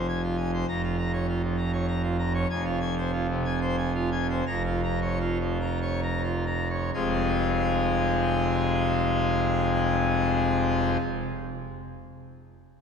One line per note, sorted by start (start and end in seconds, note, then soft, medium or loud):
0.00 0.64 F1 medium
0.00 0.64 F2 medium
0.08 0.22 G#5 medium
0.23 0.37 F4 medium
0.37 0.51 G#5 medium
0.54 0.66 C5 medium
0.68 2.45 F1 loud
0.68 2.45 F2 medium
0.68 0.82 A#5 loud
0.84 0.97 F4 medium
0.98 1.12 A#5 medium
1.13 1.26 C#5 medium
1.29 1.42 F4 medium
1.43 1.56 F3 medium
1.57 1.71 A#5 medium
1.72 1.86 C#5 medium
1.88 2.02 A#5 medium
2.03 2.17 F4 medium
2.19 2.33 A#5 medium
2.34 2.47 C#5 medium
2.50 4.42 F1 loud
2.50 4.42 F2 loud
2.50 2.64 G#5 loud
2.65 2.79 F4 medium
2.81 2.95 G#5 medium
2.98 3.11 C5 medium
3.13 3.27 F4 loud
3.30 3.43 C3 medium
3.45 3.59 G#5 loud
3.61 3.76 C5 loud
3.78 3.93 G#5 loud
3.95 4.10 F4 medium
4.12 4.27 G#5 loud
4.30 4.44 C5 medium
4.46 6.91 F1 loud
4.46 6.91 F2 loud
4.46 4.62 A#5 loud
4.65 4.81 F4 loud
4.83 4.99 A#5 medium
5.02 5.18 C#5 medium
5.20 5.38 F4 loud
5.40 5.58 F3 medium
5.61 5.79 A#5 loud
5.82 6.00 C#5 medium
6.03 6.22 A#5 medium
6.24 6.44 F4 medium
6.47 6.68 A#5 medium
6.70 6.91 C#5 medium
6.93 10.96 F1 medium
6.93 10.97 F2 medium
6.93 10.97 C3 medium
6.93 10.97 G#3 medium
6.93 10.97 C4 medium
6.93 10.97 F4 medium
6.93 10.97 G#4 medium